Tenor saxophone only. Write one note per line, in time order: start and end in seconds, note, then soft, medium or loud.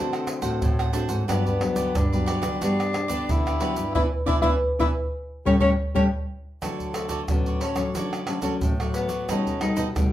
0.00 0.95 C4 medium
1.30 1.98 B3 medium
1.97 2.63 D4 medium
2.64 3.33 D4 loud
3.31 3.95 E4 loud
3.95 4.03 E4 medium
4.27 4.36 E4 medium
4.42 4.51 E4 loud
4.80 4.88 E4 loud
5.47 5.54 C#4 medium
5.61 5.70 C#4 loud
5.96 6.04 C#4 medium
6.94 7.32 A3 medium
7.31 7.61 B3 medium
7.61 7.93 C#4 medium
8.95 9.32 B3 medium
9.30 9.61 C#4 medium
9.61 9.82 D#4 medium